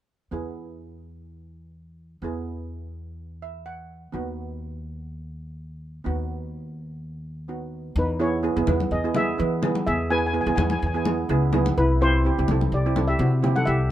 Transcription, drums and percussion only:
8.67 high conga, low conga
8.80 high conga
9.15 high conga, low conga
9.63 high conga, low conga
9.75 high conga
10.58 high conga, low conga
10.70 high conga
11.05 high conga
11.53 high conga, low conga
11.66 high conga
12.48 high conga, low conga
12.61 high conga
12.96 high conga, low conga
13.44 high conga, low conga
13.56 high conga

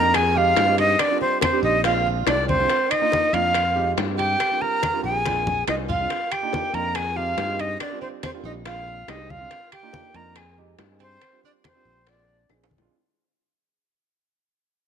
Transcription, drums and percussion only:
0.14 high bongo, high conga, high timbale, claves
0.36 high conga
0.56 high bongo, low bongo, high conga, high timbale, low timbale
0.78 high conga, high timbale
0.99 high bongo, high conga, high timbale, claves
1.21 high bongo, high conga
1.41 high bongo, high conga, high timbale, low timbale, claves
1.63 high bongo, high conga
1.84 high bongo, high conga, high timbale
2.06 high bongo, high conga
2.27 high bongo, low bongo, high conga, high timbale, low timbale, claves
2.49 high conga
2.70 high bongo, high conga, high timbale
2.91 high conga, high timbale, claves
3.12 high bongo, high conga, low timbale
3.34 high timbale
3.54 high bongo, high conga, high timbale, claves
3.77 high conga
3.98 high bongo, low bongo, high conga, high timbale, low timbale
4.19 high conga, high timbale
4.40 high bongo, high conga, high timbale, claves
4.61 high bongo, high conga
4.83 high bongo, high conga, high timbale, low timbale, claves
5.04 high bongo, high conga
5.25 high bongo, high conga, high timbale
5.47 high bongo, low conga
5.68 high bongo, low bongo, high timbale, low timbale, claves
5.90 low conga
6.10 high bongo, high conga, high timbale
6.32 high conga, high timbale, claves
6.53 high bongo, high conga, low timbale
6.74 high timbale
6.95 high bongo, high conga, high timbale, claves
7.18 high conga
7.38 high bongo, low bongo, high conga, high timbale, low timbale
7.59 high conga, high timbale
7.80 high bongo, high conga, high timbale, claves
8.02 high bongo, high conga
8.23 high bongo, high conga, high timbale, low timbale, claves
8.45 high bongo, high conga
8.65 high bongo, high conga, high timbale
8.87 high bongo, high conga
9.08 high bongo, low bongo, high conga, high timbale, low timbale, claves
9.30 high conga
9.51 high bongo, high conga, high timbale
9.72 high conga, high timbale, claves
9.93 high bongo, high conga, low timbale
10.14 high timbale
10.36 high bongo, high conga, high timbale, claves
10.58 high conga
10.79 high bongo, low bongo, high conga, high timbale, low timbale
11.00 high conga, high timbale
11.21 high bongo, high conga, high timbale, claves
11.43 high bongo, high conga
11.64 high bongo, high conga, high timbale, low timbale, claves
11.86 high bongo, high conga
12.07 high bongo, high conga, high timbale
12.29 high bongo, high conga
12.49 high bongo, high conga, high timbale, claves
12.64 high bongo, high timbale
12.71 high conga
12.78 low bongo, low timbale

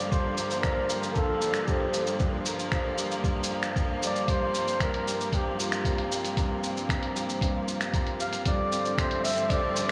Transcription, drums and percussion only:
0.12 kick, shaker
0.38 shaker
0.50 shaker
0.63 finger snap, kick, shaker
0.90 shaker
1.03 shaker
1.15 kick, shaker
1.42 shaker
1.54 finger snap, shaker
1.68 kick, shaker
1.94 shaker
2.07 shaker
2.20 kick, shaker
2.46 shaker
2.59 shaker
2.72 finger snap, kick, shaker
2.98 shaker
3.11 shaker
3.24 kick, shaker
3.44 shaker
3.63 finger snap, shaker
3.76 kick, shaker
4.03 shaker
4.16 shaker
4.28 kick, closed hi-hat, shaker
4.54 shaker
4.68 shaker
4.80 finger snap, kick, closed hi-hat, shaker
4.94 closed hi-hat
5.08 shaker
5.21 shaker
5.32 kick, closed hi-hat, shaker
5.60 shaker
5.72 finger snap, closed hi-hat, shaker
5.85 kick, closed hi-hat, shaker
5.98 closed hi-hat
6.12 shaker
6.25 closed hi-hat, shaker
6.37 kick, closed hi-hat, shaker
6.64 shaker
6.77 shaker
6.89 finger snap, kick, closed hi-hat, shaker
7.03 closed hi-hat
7.16 shaker
7.29 shaker
7.41 kick, closed hi-hat, shaker
7.68 shaker
7.81 finger snap, closed hi-hat, shaker
7.93 kick, closed hi-hat, shaker
8.07 closed hi-hat
8.20 shaker
8.33 closed hi-hat, shaker
8.45 kick, closed hi-hat, shaker
8.72 shaker
8.85 shaker
8.98 finger snap, kick, closed hi-hat, shaker
9.11 closed hi-hat
9.25 shaker
9.27 shaker
9.29 shaker
9.32 shaker
9.35 shaker
9.37 shaker
9.50 kick, closed hi-hat, shaker
9.76 shaker

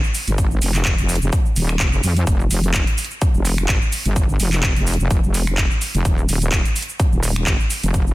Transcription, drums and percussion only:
0.04 shaker
0.15 open hi-hat, shaker
0.28 closed hi-hat, shaker
0.38 kick, closed hi-hat, shaker
0.51 shaker
0.62 open hi-hat, shaker
0.75 clap, closed hi-hat, shaker
0.85 kick, clap, closed hi-hat, shaker
0.98 closed hi-hat, shaker
1.09 open hi-hat, shaker
1.15 closed hi-hat
1.22 shaker
1.33 kick, closed hi-hat, shaker
1.46 shaker
1.56 open hi-hat, shaker
1.69 finger snap, shaker
1.80 kick, clap, closed hi-hat, shaker
1.93 shaker
2.03 open hi-hat, shaker
2.16 closed hi-hat, shaker
2.27 kick, closed hi-hat, shaker
2.40 shaker
2.51 open hi-hat, shaker
2.64 closed hi-hat, shaker
2.74 kick, clap, closed hi-hat, shaker
2.87 closed hi-hat, shaker
2.98 open hi-hat, shaker
3.04 closed hi-hat
3.11 shaker
3.22 kick, closed hi-hat, shaker
3.35 shaker
3.45 open hi-hat, shaker
3.58 finger snap, closed hi-hat, shaker
3.69 kick, clap, closed hi-hat, shaker
3.82 shaker
3.92 open hi-hat, shaker
4.05 closed hi-hat, shaker
4.16 kick, closed hi-hat, shaker
4.29 shaker
4.40 open hi-hat, shaker
4.53 clap, closed hi-hat, shaker
4.63 kick, clap, closed hi-hat, shaker
4.76 closed hi-hat, shaker
4.87 open hi-hat, shaker
4.94 closed hi-hat
5.00 shaker
5.11 kick, closed hi-hat, shaker
5.24 shaker
5.34 open hi-hat, shaker
5.47 finger snap, closed hi-hat, shaker
5.58 kick, clap, closed hi-hat, shaker
5.71 shaker
5.82 open hi-hat, shaker
5.95 closed hi-hat, shaker
6.05 kick, closed hi-hat, shaker
6.18 shaker
6.29 open hi-hat, shaker
6.42 closed hi-hat, shaker
6.52 kick, clap, closed hi-hat, shaker
6.65 closed hi-hat, shaker
6.76 open hi-hat, shaker
6.82 closed hi-hat
6.89 shaker
7.00 kick, closed hi-hat, shaker
7.13 shaker
7.23 open hi-hat, shaker
7.36 finger snap, shaker
7.47 kick, clap, closed hi-hat, shaker
7.60 shaker
7.70 open hi-hat, shaker
7.83 closed hi-hat, shaker
7.94 kick, closed hi-hat, shaker
8.07 shaker

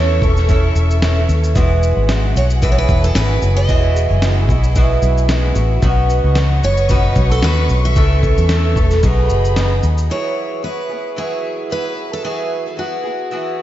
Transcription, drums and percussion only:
0.22 kick, shaker
0.37 snare, shaker
0.49 kick, shaker
0.76 shaker
0.91 shaker
1.02 snare, shaker
1.29 shaker
1.44 shaker
1.56 kick, shaker
1.83 shaker
2.09 snare, shaker
2.36 shaker
2.50 shaker
2.62 kick, shaker
2.89 kick, shaker
3.04 shaker
3.15 snare, shaker
3.42 shaker
3.69 kick, shaker
3.96 shaker
4.22 snare, shaker
4.49 kick, shaker
4.64 shaker
4.76 kick, shaker
5.02 shaker
5.18 shaker
5.29 snare, shaker
5.55 shaker
5.82 kick, shaker
6.10 shaker
6.35 snare, shaker
6.63 shaker
6.77 shaker
6.89 kick, shaker
7.16 kick, shaker
7.31 shaker
7.43 snare, shaker
7.69 shaker
7.96 kick, shaker
8.23 kick, shaker
8.38 shaker
8.49 snare, shaker
8.76 kick, shaker
8.91 snare, shaker
9.03 kick, shaker
9.30 shaker
9.45 shaker
9.56 snare, shaker
9.83 shaker
9.98 shaker

